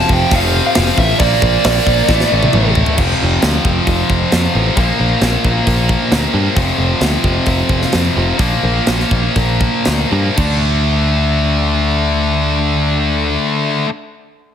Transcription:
0.00 0.29 F2 loud
0.00 0.30 C3 loud
0.00 0.31 F3 loud
0.09 0.24 F1 loud
0.09 0.34 G5 loud
0.09 kick medium
0.31 0.59 F1 loud
0.31 1.19 F2 medium
0.31 1.19 C3 loud
0.31 1.20 F3 loud
0.31 kick loud
0.31 open hi-hat medium
0.36 0.65 F5 loud
0.67 0.98 F5 medium
0.75 0.91 F1 loud
0.75 snare loud
0.75 open hi-hat medium
0.86 snare soft
0.98 1.12 A1 loud
0.98 1.19 E5 loud
0.98 kick medium
1.19 1.34 A#1 medium
1.19 2.07 A#2 loud
1.19 2.08 F3 loud
1.19 2.08 A#3 loud
1.19 2.71 D5 medium
1.19 kick loud
1.19 open hi-hat medium
1.42 1.56 A#1 medium
1.42 kick medium
1.64 1.79 A#1 loud
1.64 snare loud
1.64 open hi-hat medium
1.87 2.01 A#1 medium
1.87 kick medium
2.08 2.23 A1 loud
2.08 2.96 A2 loud
2.08 2.97 E3 loud
2.08 2.97 A3 loud
2.08 kick loud
2.08 snare medium
2.20 snare medium
2.32 2.45 A1 medium
2.43 high tom medium
2.53 2.82 A1 loud
2.53 mid tom medium
2.75 floor tom loud
2.86 floor tom loud
2.97 3.12 F1 medium
2.97 4.52 F2 medium
2.97 4.53 C3 medium
2.97 4.53 F3 loud
2.97 kick loud
2.97 crash medium
3.22 3.36 F1 medium
3.42 3.57 D2 medium
3.42 snare loud
3.42 open hi-hat soft
3.65 3.79 F1 medium
3.65 kick medium
3.87 4.01 F1 medium
3.87 kick medium
3.87 open hi-hat soft
4.10 4.24 F1 medium
4.10 kick medium
4.32 4.46 F2 medium
4.32 snare loud
4.32 open hi-hat medium
4.54 4.69 A1 loud
4.54 4.76 F2 medium
4.54 4.75 C3 medium
4.54 4.76 F3 medium
4.75 4.91 A#1 medium
4.75 6.31 A#2 medium
4.75 6.34 F3 medium
4.75 6.32 A#3 loud
4.75 kick loud
4.75 open hi-hat medium
4.99 5.13 A#1 medium
5.21 5.35 A#1 loud
5.21 snare loud
5.21 open hi-hat soft
5.45 5.59 A#1 medium
5.45 kick medium
5.67 5.95 A#1 medium
5.67 kick medium
5.67 open hi-hat medium
5.89 kick medium
6.12 6.26 D2 medium
6.12 snare loud
6.12 open hi-hat soft
6.33 6.48 G2 medium
6.33 6.55 A#2 medium
6.33 6.57 F3 medium
6.33 6.54 A#3 medium
6.55 6.70 F1 medium
6.55 8.14 F2 medium
6.55 8.15 C3 medium
6.55 8.16 F3 loud
6.55 kick loud
6.55 open hi-hat medium
6.78 6.92 F1 medium
7.01 7.15 D2 medium
7.01 snare loud
7.01 open hi-hat soft
7.24 7.38 F1 medium
7.24 kick medium
7.46 7.61 F1 medium
7.46 kick medium
7.46 open hi-hat soft
7.69 7.84 F1 medium
7.69 kick medium
7.82 snare soft
7.92 8.08 F2 medium
7.92 snare loud
7.92 open hi-hat soft
8.16 8.31 F1 loud
8.16 8.39 F2 medium
8.16 8.37 C3 medium
8.16 8.39 F3 medium
8.38 8.54 A#1 medium
8.38 10.10 A#2 medium
8.38 10.11 F3 medium
8.38 10.09 A#3 loud
8.38 kick loud
8.38 open hi-hat soft
8.63 8.78 A#1 medium
8.87 9.03 A#1 medium
8.87 snare loud
8.87 open hi-hat soft
9.00 snare soft
9.11 9.27 A#1 medium
9.11 kick medium
9.36 9.68 A#1 medium
9.36 kick medium
9.36 open hi-hat soft
9.61 kick medium
9.85 10.03 D2 medium
9.85 snare loud
9.85 open hi-hat soft
10.11 10.28 G2 medium
10.11 10.35 A#2 medium
10.11 10.37 F3 medium
10.11 10.36 A#3 medium
10.36 13.36 D2 medium
10.36 13.86 D3 medium
10.36 13.88 A3 medium
10.36 13.89 D4 medium
10.36 kick loud
10.36 crash medium

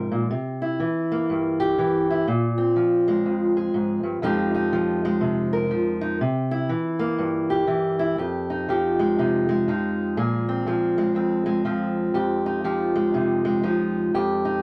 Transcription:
0.00 0.12 G#2 medium
0.00 0.11 C3 medium
0.00 0.27 F3 medium
0.00 0.30 G#3 medium
0.00 0.28 D#4 medium
0.00 0.28 A#4 medium
0.12 0.30 A#2 medium
0.31 0.79 C3 medium
0.62 2.09 E4 medium
0.80 1.77 E3 medium
1.12 2.26 A#3 medium
1.30 2.25 G2 medium
1.60 2.25 G4 medium
1.78 2.25 E3 medium
2.10 2.26 E4 medium
2.28 3.26 A#2 medium
2.58 4.24 C4 medium
2.76 4.21 F3 medium
3.08 4.23 G#3 medium
3.26 3.74 F2 medium
3.57 4.22 G#4 medium
3.74 4.03 G#2 medium
4.03 4.22 G2 medium
4.22 6.20 F2 medium
4.22 4.72 F3 medium
4.22 5.03 G#3 medium
4.22 4.53 D#4 medium
4.22 5.52 G4 medium
4.55 6.00 D#4 medium
4.73 5.70 F3 medium
5.05 6.21 G#3 medium
5.21 5.71 C3 medium
5.53 6.18 A#4 medium
5.71 6.18 F3 medium
6.01 6.18 D#4 medium
6.21 6.70 C3 medium
6.51 7.98 E4 medium
6.69 7.66 E3 medium
6.99 8.15 A#3 medium
7.18 8.15 G2 medium
7.50 8.16 G4 medium
7.67 8.15 E3 medium
7.99 8.16 E4 medium
8.18 10.16 F2 medium
8.18 8.68 G4 medium
8.50 9.18 D#4 medium
8.69 9.68 F3 medium
8.69 10.15 G4 medium
8.99 9.48 G#3 medium
9.19 9.67 C3 medium
9.19 9.68 D#4 medium
9.49 10.97 G#3 medium
9.68 10.66 F3 medium
9.68 10.15 D#4 medium
10.17 11.16 A#2 medium
10.17 10.67 G#4 medium
10.49 11.16 C4 medium
10.67 11.64 F3 medium
10.67 12.14 G#4 medium
10.98 11.45 G#3 medium
11.15 12.13 F2 medium
11.15 11.65 C4 medium
11.46 12.95 G#3 medium
11.65 12.18 F3 medium
11.65 12.46 C4 medium
12.14 14.13 F2 medium
12.14 12.64 G4 medium
12.46 13.14 D#4 medium
12.64 13.62 F3 medium
12.64 14.14 G4 medium
12.96 13.44 G#3 medium
13.14 13.64 C3 medium
13.14 13.63 D#4 medium
13.45 14.62 G#3 medium
13.63 14.11 F3 medium
13.63 14.11 D#4 medium
14.14 14.62 F2 medium
14.14 14.62 G4 medium
14.45 14.62 D#4 medium

